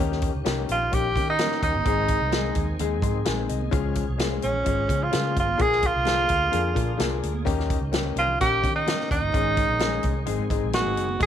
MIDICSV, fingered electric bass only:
0, 0, Header, 1, 2, 480
1, 0, Start_track
1, 0, Tempo, 467290
1, 1908, Time_signature, 4, 2, 24, 8
1, 11566, End_track
2, 0, Start_track
2, 0, Title_t, "Fingered electric bass"
2, 0, Program_c, 0, 33
2, 0, Note_on_c, 0, 39, 101
2, 297, Note_off_c, 0, 39, 0
2, 361, Note_on_c, 0, 37, 78
2, 458, Note_off_c, 0, 37, 0
2, 475, Note_on_c, 0, 36, 93
2, 675, Note_off_c, 0, 36, 0
2, 712, Note_on_c, 0, 34, 77
2, 913, Note_off_c, 0, 34, 0
2, 957, Note_on_c, 0, 34, 81
2, 1191, Note_on_c, 0, 51, 88
2, 1206, Note_off_c, 0, 34, 0
2, 1494, Note_off_c, 0, 51, 0
2, 1670, Note_on_c, 0, 39, 78
2, 1771, Note_off_c, 0, 39, 0
2, 1792, Note_on_c, 0, 31, 86
2, 1892, Note_off_c, 0, 31, 0
2, 1909, Note_on_c, 0, 32, 96
2, 2212, Note_off_c, 0, 32, 0
2, 2270, Note_on_c, 0, 36, 91
2, 2573, Note_off_c, 0, 36, 0
2, 2634, Note_on_c, 0, 39, 84
2, 2834, Note_off_c, 0, 39, 0
2, 2874, Note_on_c, 0, 39, 77
2, 3109, Note_off_c, 0, 39, 0
2, 3109, Note_on_c, 0, 44, 80
2, 3311, Note_off_c, 0, 44, 0
2, 3359, Note_on_c, 0, 34, 85
2, 3557, Note_off_c, 0, 34, 0
2, 3600, Note_on_c, 0, 36, 78
2, 3797, Note_off_c, 0, 36, 0
2, 3829, Note_on_c, 0, 37, 94
2, 4132, Note_off_c, 0, 37, 0
2, 4203, Note_on_c, 0, 36, 82
2, 4500, Note_off_c, 0, 36, 0
2, 4557, Note_on_c, 0, 34, 85
2, 4756, Note_off_c, 0, 34, 0
2, 4795, Note_on_c, 0, 32, 85
2, 4995, Note_off_c, 0, 32, 0
2, 5027, Note_on_c, 0, 49, 86
2, 5231, Note_off_c, 0, 49, 0
2, 5282, Note_on_c, 0, 49, 99
2, 5514, Note_on_c, 0, 32, 78
2, 5530, Note_off_c, 0, 49, 0
2, 5715, Note_off_c, 0, 32, 0
2, 5748, Note_on_c, 0, 34, 94
2, 6053, Note_off_c, 0, 34, 0
2, 6121, Note_on_c, 0, 36, 83
2, 6421, Note_off_c, 0, 36, 0
2, 6472, Note_on_c, 0, 38, 85
2, 6674, Note_off_c, 0, 38, 0
2, 6711, Note_on_c, 0, 41, 82
2, 6914, Note_off_c, 0, 41, 0
2, 6946, Note_on_c, 0, 46, 92
2, 7151, Note_off_c, 0, 46, 0
2, 7185, Note_on_c, 0, 36, 92
2, 7391, Note_off_c, 0, 36, 0
2, 7431, Note_on_c, 0, 38, 85
2, 7634, Note_off_c, 0, 38, 0
2, 7673, Note_on_c, 0, 39, 98
2, 7977, Note_off_c, 0, 39, 0
2, 8026, Note_on_c, 0, 37, 88
2, 8333, Note_off_c, 0, 37, 0
2, 8379, Note_on_c, 0, 36, 81
2, 8588, Note_off_c, 0, 36, 0
2, 8639, Note_on_c, 0, 34, 81
2, 8872, Note_on_c, 0, 51, 84
2, 8887, Note_off_c, 0, 34, 0
2, 9177, Note_off_c, 0, 51, 0
2, 9359, Note_on_c, 0, 39, 74
2, 9458, Note_off_c, 0, 39, 0
2, 9472, Note_on_c, 0, 31, 83
2, 9574, Note_off_c, 0, 31, 0
2, 9597, Note_on_c, 0, 32, 99
2, 9900, Note_off_c, 0, 32, 0
2, 9953, Note_on_c, 0, 34, 88
2, 10258, Note_off_c, 0, 34, 0
2, 10318, Note_on_c, 0, 36, 85
2, 10520, Note_off_c, 0, 36, 0
2, 10555, Note_on_c, 0, 32, 85
2, 10656, Note_off_c, 0, 32, 0
2, 10664, Note_on_c, 0, 44, 93
2, 10770, Note_off_c, 0, 44, 0
2, 10793, Note_on_c, 0, 32, 72
2, 10895, Note_off_c, 0, 32, 0
2, 10915, Note_on_c, 0, 34, 75
2, 11118, Note_off_c, 0, 34, 0
2, 11150, Note_on_c, 0, 32, 76
2, 11275, Note_off_c, 0, 32, 0
2, 11275, Note_on_c, 0, 30, 83
2, 11478, Note_off_c, 0, 30, 0
2, 11516, Note_on_c, 0, 32, 90
2, 11566, Note_off_c, 0, 32, 0
2, 11566, End_track
0, 0, End_of_file